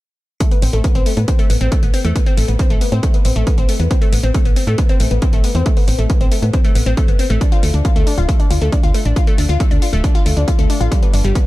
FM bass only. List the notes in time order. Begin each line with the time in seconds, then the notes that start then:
0.62 A1
0.73 A1
0.95 A1
1.17 A2
1.50 A1
1.61 A1
1.83 A1
2.05 E2
2.37 A1
2.49 A1
2.70 A1
2.92 A2
3.25 A1
3.36 A1
3.58 A1
3.80 E2
4.12 A1
4.23 A1
4.45 A1
4.67 A2
5.00 A1
5.11 A1
5.33 A1
5.55 E2
5.88 A1
5.99 A1
6.21 A1
6.42 A2
6.75 A1
6.86 A1
7.08 G1
7.30 A1
7.63 D2
7.74 D2
7.96 D2
8.18 D1
8.51 D2
8.62 D2
8.83 D2
9.05 A1
9.38 D2
9.49 D2
9.71 D2
9.93 D1
10.26 D2
10.37 D2
10.59 D2
10.81 A1
11.13 G1
11.24 G1